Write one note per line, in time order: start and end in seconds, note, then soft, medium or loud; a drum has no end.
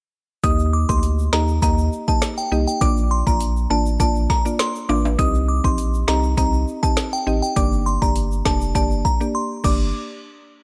0.44 0.85 D#2 loud
0.44 0.85 A#3 loud
0.44 0.85 D#4 medium
0.44 0.85 G4 medium
0.44 0.86 D#5 loud
0.44 0.57 D#6 loud
0.44 kick loud
0.44 closed hi-hat medium
0.44 shaker medium
0.59 shaker medium
0.73 0.87 D6 medium
0.89 1.29 D2 medium
0.89 1.29 A#3 medium
0.89 1.29 D#4 medium
0.89 1.30 G4 medium
0.89 1.30 D#5 medium
0.89 1.01 C6 medium
0.89 kick medium
0.89 shaker medium
1.03 closed hi-hat medium
1.03 shaker medium
1.19 shaker medium
1.33 1.60 D#2 medium
1.33 1.60 A#3 medium
1.33 1.60 D#4 medium
1.33 1.60 G4 medium
1.33 1.60 D#5 medium
1.33 1.46 A#5 medium
1.33 snare loud
1.48 shaker medium
1.62 1.90 D#2 loud
1.62 2.04 A#3 loud
1.62 2.04 D#4 medium
1.62 2.04 G4 medium
1.62 2.04 D#5 loud
1.62 1.76 A#5 medium
1.62 kick medium
1.62 closed hi-hat medium
1.62 shaker medium
1.78 shaker medium
1.93 shaker medium
2.08 2.25 A#3 medium
2.08 2.26 D#4 medium
2.08 2.26 G4 medium
2.08 2.26 D#5 medium
2.08 2.20 A5 medium
2.08 kick medium
2.08 shaker medium
2.22 cross-stick medium
2.22 snare loud
2.22 closed hi-hat medium
2.22 shaker medium
2.38 2.50 G5 medium
2.38 shaker soft
2.52 2.66 C2 medium
2.52 2.70 A#3 medium
2.52 2.71 D#4 medium
2.52 2.71 G4 medium
2.52 2.71 D#5 medium
2.52 shaker soft
2.67 2.79 G5 medium
2.67 shaker medium
2.81 3.23 A#1 loud
2.81 3.23 A#3 loud
2.81 3.23 D4 medium
2.81 3.23 F4 medium
2.81 3.23 D5 loud
2.81 2.95 D6 loud
2.81 kick loud
2.81 closed hi-hat medium
2.81 shaker medium
2.97 shaker medium
3.11 3.25 C6 medium
3.27 3.67 A#1 medium
3.27 3.67 A#3 medium
3.27 3.67 D4 medium
3.27 3.67 F4 medium
3.27 3.67 D5 medium
3.27 3.39 A#5 medium
3.27 kick medium
3.27 shaker medium
3.40 closed hi-hat medium
3.40 shaker medium
3.56 shaker medium
3.70 3.98 A1 loud
3.70 3.98 A#3 medium
3.70 3.98 D4 medium
3.70 3.98 F4 medium
3.70 3.98 D5 medium
3.70 3.84 A5 medium
3.86 shaker medium
4.00 4.27 A#1 loud
4.00 4.42 A#3 loud
4.00 4.42 D4 medium
4.00 4.42 F4 medium
4.00 4.42 D5 loud
4.00 4.14 A5 medium
4.00 kick medium
4.00 closed hi-hat medium
4.00 shaker medium
4.16 shaker medium
4.30 4.43 A#5 medium
4.30 kick medium
4.30 snare medium
4.30 shaker medium
4.45 4.63 A#3 medium
4.45 4.63 D4 medium
4.45 4.63 F4 medium
4.45 4.63 D5 medium
4.45 shaker medium
4.59 4.73 C6 medium
4.59 cross-stick loud
4.59 snare loud
4.59 closed hi-hat medium
4.59 shaker medium
4.75 shaker soft
4.89 5.16 A1 loud
4.89 5.08 A#3 medium
4.89 5.08 D4 medium
4.89 5.08 F4 medium
4.89 5.08 D5 medium
4.89 5.03 D6 medium
4.89 high timbale medium
4.89 shaker soft
5.05 high timbale medium
5.05 shaker medium
5.19 5.60 C2 loud
5.19 5.60 C4 loud
5.19 5.61 D#4 medium
5.19 5.61 G4 medium
5.19 5.61 D#5 loud
5.19 5.32 D#6 loud
5.19 kick loud
5.19 closed hi-hat medium
5.19 shaker medium
5.35 shaker medium
5.48 5.62 D6 medium
5.64 6.04 A#1 medium
5.64 6.05 C4 medium
5.64 6.05 D#4 medium
5.64 6.05 G4 medium
5.64 6.05 D#5 medium
5.64 5.77 C6 medium
5.64 kick medium
5.64 shaker medium
5.78 closed hi-hat medium
5.78 shaker medium
5.94 shaker medium
6.08 6.35 C2 loud
6.08 6.35 C4 medium
6.08 6.35 D#4 medium
6.08 6.35 G4 medium
6.08 6.36 D#5 medium
6.08 6.22 A#5 medium
6.08 snare loud
6.23 shaker medium
6.37 6.65 C2 loud
6.37 6.79 C4 loud
6.37 6.79 D#4 medium
6.37 6.79 G4 medium
6.37 6.79 D#5 loud
6.37 6.51 A#5 medium
6.37 kick medium
6.37 closed hi-hat medium
6.37 shaker medium
6.53 shaker medium
6.68 shaker soft
6.83 7.01 C4 medium
6.83 7.01 D#4 medium
6.83 7.01 G4 medium
6.83 7.01 D#5 medium
6.83 6.95 A5 medium
6.83 kick loud
6.83 shaker medium
6.97 cross-stick medium
6.97 snare loud
6.97 closed hi-hat medium
6.97 shaker medium
7.13 7.25 G5 medium
7.13 shaker soft
7.27 7.41 A1 loud
7.27 7.46 C4 medium
7.27 7.46 D#4 medium
7.27 7.46 G4 medium
7.27 7.46 D#5 medium
7.27 shaker soft
7.42 7.55 G5 medium
7.42 shaker medium
7.56 7.98 G1 loud
7.56 7.98 A#3 loud
7.56 7.98 D4 medium
7.56 7.98 G4 medium
7.56 7.98 D5 loud
7.56 7.70 D6 medium
7.56 kick loud
7.56 closed hi-hat medium
7.56 shaker medium
7.72 shaker medium
7.86 8.00 C6 medium
7.86 shaker medium
8.02 8.42 G1 medium
8.02 8.42 A#3 medium
8.02 8.42 D4 medium
8.02 8.42 G4 medium
8.02 8.42 D5 medium
8.02 8.14 A#5 medium
8.02 kick medium
8.02 shaker medium
8.16 closed hi-hat medium
8.16 shaker medium
8.32 shaker medium
8.45 8.73 F1 loud
8.45 8.73 A#3 medium
8.45 8.73 D4 medium
8.45 8.73 G4 medium
8.45 8.73 D5 medium
8.45 8.59 A5 medium
8.45 kick loud
8.45 snare loud
8.45 shaker soft
8.61 shaker medium
8.75 9.02 G1 loud
8.75 9.17 A#3 loud
8.75 9.17 D4 medium
8.75 9.17 G4 medium
8.75 9.17 D5 loud
8.75 8.89 A5 medium
8.75 kick medium
8.75 closed hi-hat medium
8.75 shaker medium
8.91 shaker medium
9.05 9.19 A#5 medium
9.05 kick medium
9.05 shaker medium
9.20 9.35 A#3 medium
9.20 9.35 D4 medium
9.20 9.35 G4 medium
9.20 9.35 D5 medium
9.20 shaker medium
9.35 9.48 C6 medium
9.64 9.92 G1 loud
9.64 9.87 A#3 medium
9.64 9.87 D4 medium
9.64 9.87 G4 medium
9.64 9.87 D5 loud
9.64 9.92 D6 medium
9.64 kick loud
9.64 crash medium
9.64 shaker medium